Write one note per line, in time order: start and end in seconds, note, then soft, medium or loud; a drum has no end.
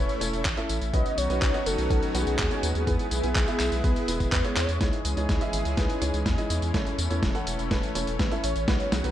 0.00 0.92 A3 medium
0.00 0.18 C#4 medium
0.00 0.90 C#4 medium
0.00 0.18 E4 medium
0.00 0.92 E4 medium
0.00 0.18 A4 medium
0.00 0.18 B4 medium
0.00 0.46 C#5 loud
0.09 closed hi-hat soft
0.09 tambourine soft
0.21 0.31 E1 loud
0.21 0.40 C#4 medium
0.21 0.40 E4 medium
0.21 0.40 A4 medium
0.21 0.40 C#5 loud
0.21 closed hi-hat medium
0.21 tambourine medium
0.33 0.43 E1 medium
0.33 closed hi-hat soft
0.33 tambourine soft
0.45 0.55 A1 loud
0.45 kick loud
0.45 clap loud
0.45 closed hi-hat medium
0.45 tambourine soft
0.57 0.76 C#4 medium
0.57 0.76 E4 medium
0.57 0.76 A4 medium
0.57 0.76 E5 medium
0.57 closed hi-hat soft
0.57 tambourine soft
0.69 0.79 A1 loud
0.69 closed hi-hat medium
0.69 tambourine medium
0.81 0.91 A1 medium
0.81 closed hi-hat soft
0.81 tambourine soft
0.94 1.04 B1 loud
0.94 2.85 D#3 medium
0.94 2.85 F#3 medium
0.94 4.77 B3 medium
0.94 1.12 C#4 medium
0.94 2.85 C#4 medium
0.94 1.12 D#4 medium
0.94 1.12 F#4 medium
0.94 2.85 F#4 medium
0.94 1.12 B4 medium
0.94 1.19 D#5 loud
0.94 kick loud
0.94 closed hi-hat medium
0.94 tambourine soft
1.06 closed hi-hat soft
1.06 tambourine soft
1.18 1.28 B1 loud
1.18 1.68 C#5 loud
1.18 closed hi-hat medium
1.18 tambourine medium
1.30 1.40 B1 medium
1.30 1.51 C#4 medium
1.30 1.51 D#4 medium
1.30 1.51 F#4 medium
1.30 1.51 B4 loud
1.30 closed hi-hat soft
1.30 tambourine soft
1.42 1.52 B1 loud
1.42 kick loud
1.42 clap loud
1.42 closed hi-hat medium
1.42 tambourine soft
1.54 1.88 C#4 medium
1.54 1.87 D#4 medium
1.54 1.88 F#4 medium
1.54 1.88 D#5 loud
1.54 closed hi-hat soft
1.54 tambourine soft
1.66 1.76 F#1 medium
1.66 2.14 A4 loud
1.66 closed hi-hat medium
1.66 tambourine medium
1.78 1.88 B1 medium
1.78 closed hi-hat soft
1.78 tambourine soft
1.90 2.00 B1 loud
1.90 2.12 C#4 medium
1.90 2.12 D#4 medium
1.90 2.12 F#4 medium
1.90 2.12 A4 medium
1.90 kick loud
1.90 closed hi-hat medium
1.90 tambourine soft
2.03 closed hi-hat soft
2.03 tambourine soft
2.15 2.25 B1 loud
2.15 2.33 C#4 medium
2.15 2.33 D#4 medium
2.15 2.33 F#4 medium
2.15 2.83 G#4 loud
2.15 2.33 B4 loud
2.15 closed hi-hat medium
2.15 tambourine medium
2.27 2.37 B1 medium
2.27 closed hi-hat soft
2.27 tambourine soft
2.39 2.49 D#2 loud
2.39 kick loud
2.39 clap loud
2.39 closed hi-hat medium
2.39 tambourine soft
2.51 2.70 C#4 medium
2.51 2.70 D#4 medium
2.51 2.70 F#4 medium
2.51 2.70 C#5 loud
2.51 closed hi-hat soft
2.51 tambourine soft
2.63 2.73 D#2 loud
2.63 closed hi-hat medium
2.63 tambourine medium
2.75 2.85 D#2 medium
2.75 closed hi-hat soft
2.75 tambourine soft
2.87 2.97 E2 loud
2.87 4.79 G#3 medium
2.87 3.06 B3 medium
2.87 4.79 E4 loud
2.87 3.06 E4 medium
2.87 4.28 G#4 medium
2.87 3.06 G#4 medium
2.87 3.06 B4 medium
2.87 kick loud
2.87 closed hi-hat medium
2.87 tambourine soft
2.99 closed hi-hat soft
2.99 tambourine soft
3.11 3.21 B1 medium
3.11 closed hi-hat medium
3.11 tambourine medium
3.23 3.33 B1 medium
3.23 3.45 B3 medium
3.23 3.45 E4 medium
3.23 3.45 G#4 medium
3.23 3.45 B4 medium
3.23 closed hi-hat soft
3.23 tambourine soft
3.36 3.46 B1 loud
3.36 kick loud
3.36 clap loud
3.36 closed hi-hat medium
3.36 tambourine soft
3.48 3.81 B3 medium
3.48 3.81 E4 medium
3.48 3.81 G#4 medium
3.48 3.81 E5 loud
3.48 closed hi-hat soft
3.48 tambourine soft
3.60 3.70 B1 medium
3.60 clap medium
3.60 closed hi-hat medium
3.60 tambourine medium
3.72 3.82 B1 medium
3.72 closed hi-hat soft
3.72 tambourine soft
3.84 3.94 B1 loud
3.84 4.05 B3 medium
3.84 4.05 E4 medium
3.84 4.05 G#4 medium
3.84 4.05 B4 medium
3.84 kick loud
3.84 closed hi-hat medium
3.84 tambourine soft
3.96 closed hi-hat soft
3.96 tambourine soft
4.08 4.18 E1 medium
4.08 4.27 B3 medium
4.08 4.27 E4 medium
4.08 4.27 G#4 medium
4.08 4.27 B4 loud
4.08 closed hi-hat medium
4.08 tambourine medium
4.20 4.30 E1 medium
4.20 kick medium
4.20 closed hi-hat soft
4.20 tambourine soft
4.32 4.42 E2 loud
4.32 4.43 B4 medium
4.32 kick loud
4.32 clap loud
4.32 closed hi-hat medium
4.32 tambourine soft
4.45 4.63 B3 medium
4.45 4.63 E4 medium
4.45 4.63 G#4 medium
4.45 4.63 C#5 loud
4.45 closed hi-hat soft
4.45 tambourine soft
4.56 4.66 E2 loud
4.56 5.06 C#5 loud
4.56 clap medium
4.56 closed hi-hat loud
4.56 tambourine medium
4.69 4.79 E2 medium
4.69 closed hi-hat soft
4.69 tambourine soft
4.81 4.91 C#2 loud
4.81 8.64 E3 medium
4.81 6.72 G#3 medium
4.81 9.11 C#4 medium
4.81 5.00 D#4 medium
4.81 5.00 E4 medium
4.81 5.00 G#4 medium
4.81 6.72 G#4 loud
4.81 5.00 C#5 medium
4.81 kick loud
4.81 snare soft
4.81 closed hi-hat medium
4.81 tambourine soft
4.93 closed hi-hat soft
4.93 tambourine soft
5.05 5.15 C#2 medium
5.05 5.52 G#4 loud
5.05 closed hi-hat medium
5.05 tambourine medium
5.17 5.27 C#2 medium
5.17 5.38 D#4 medium
5.17 5.38 E4 medium
5.17 5.38 G#4 medium
5.17 5.38 C#5 medium
5.17 closed hi-hat soft
5.17 tambourine soft
5.29 5.39 C#2 loud
5.29 kick loud
5.29 snare soft
5.29 closed hi-hat medium
5.29 tambourine soft
5.41 5.75 E4 medium
5.41 5.75 G#4 medium
5.41 5.75 D#5 medium
5.41 5.75 E5 loud
5.41 closed hi-hat soft
5.41 tambourine soft
5.53 5.63 G#1 medium
5.53 5.64 B4 loud
5.53 closed hi-hat loud
5.53 tambourine medium
5.65 5.75 C#2 medium
5.65 closed hi-hat soft
5.65 tambourine soft
5.77 5.87 C#2 loud
5.77 5.99 D#4 medium
5.77 5.99 E4 medium
5.77 5.99 G#4 medium
5.77 5.99 B4 medium
5.77 6.27 C#5 loud
5.77 kick loud
5.77 snare medium
5.77 closed hi-hat medium
5.77 tambourine soft
5.90 closed hi-hat soft
5.90 tambourine soft
6.02 6.12 C#2 loud
6.02 6.20 D#4 medium
6.02 6.20 E4 medium
6.02 6.20 G#4 medium
6.02 6.20 C#5 loud
6.02 closed hi-hat loud
6.02 tambourine medium
6.14 6.24 C#2 medium
6.14 closed hi-hat soft
6.14 tambourine soft
6.25 6.36 E2 loud
6.25 6.49 D#5 loud
6.25 kick loud
6.25 snare medium
6.25 closed hi-hat medium
6.25 tambourine soft
6.38 6.57 D#4 medium
6.38 6.57 E4 medium
6.38 6.57 G#4 medium
6.38 6.57 D#5 medium
6.38 closed hi-hat soft
6.38 tambourine soft
6.50 6.60 E2 medium
6.50 6.95 E5 loud
6.50 closed hi-hat loud
6.50 tambourine medium
6.62 6.72 E2 medium
6.62 closed hi-hat soft
6.62 tambourine soft
6.74 6.84 A1 loud
6.74 8.66 A3 medium
6.74 6.93 C#4 medium
6.74 6.93 E4 medium
6.74 6.93 A4 medium
6.74 6.93 C#5 medium
6.74 kick loud
6.74 snare medium
6.74 closed hi-hat medium
6.74 tambourine soft
6.87 closed hi-hat soft
6.87 tambourine soft
6.98 7.08 E2 medium
6.98 closed hi-hat medium
6.98 tambourine medium
7.10 7.20 E2 medium
7.10 7.32 C#4 medium
7.10 7.32 E4 medium
7.10 7.32 A4 medium
7.10 7.32 C#5 loud
7.10 closed hi-hat soft
7.10 tambourine soft
7.23 7.33 E1 loud
7.23 kick loud
7.23 snare medium
7.23 closed hi-hat medium
7.23 tambourine soft
7.35 7.68 C#4 medium
7.35 7.68 E4 medium
7.35 7.68 A4 medium
7.35 7.68 F#5 loud
7.35 closed hi-hat soft
7.35 tambourine soft
7.47 7.57 E1 medium
7.47 closed hi-hat loud
7.47 tambourine medium
7.59 7.69 E1 medium
7.59 closed hi-hat soft
7.59 tambourine soft
7.71 7.81 E1 loud
7.71 7.92 C#4 medium
7.71 7.92 E4 medium
7.71 7.92 A4 medium
7.71 7.92 B4 medium
7.71 kick loud
7.71 snare medium
7.71 closed hi-hat medium
7.71 tambourine soft
7.83 closed hi-hat soft
7.83 tambourine soft
7.95 8.05 E1 medium
7.95 8.14 C#4 medium
7.95 8.14 E4 medium
7.95 8.14 A4 medium
7.95 8.14 C#5 loud
7.95 closed hi-hat loud
7.95 tambourine medium
8.07 8.17 E1 medium
8.07 closed hi-hat soft
8.07 tambourine soft
8.19 8.29 A1 loud
8.19 8.31 B4 medium
8.19 kick loud
8.19 snare medium
8.19 closed hi-hat medium
8.19 tambourine soft
8.31 8.50 C#4 medium
8.31 8.50 E4 medium
8.31 8.50 A4 medium
8.31 8.50 E5 loud
8.31 closed hi-hat soft
8.31 tambourine soft
8.44 8.54 A1 loud
8.44 8.94 C#5 loud
8.44 closed hi-hat loud
8.44 tambourine medium
8.56 8.66 A1 medium
8.56 closed hi-hat soft
8.56 tambourine soft
8.68 8.78 B1 loud
8.68 9.11 D#3 medium
8.68 9.11 F#3 medium
8.68 9.11 B3 medium
8.68 8.87 C#4 medium
8.68 8.87 D#4 medium
8.68 9.11 F#4 loud
8.68 8.87 F#4 medium
8.68 8.87 B4 medium
8.68 kick loud
8.68 snare medium
8.68 closed hi-hat medium
8.68 tambourine soft
8.80 closed hi-hat soft
8.80 tambourine soft
8.92 9.02 B1 medium
8.92 9.11 G#4 loud
8.92 snare medium
8.92 closed hi-hat medium
8.92 tambourine medium
9.04 9.11 B1 medium
9.04 9.11 C#4 medium
9.04 9.11 D#4 medium
9.04 9.11 F#4 medium
9.04 9.11 B4 medium
9.04 closed hi-hat soft
9.04 tambourine soft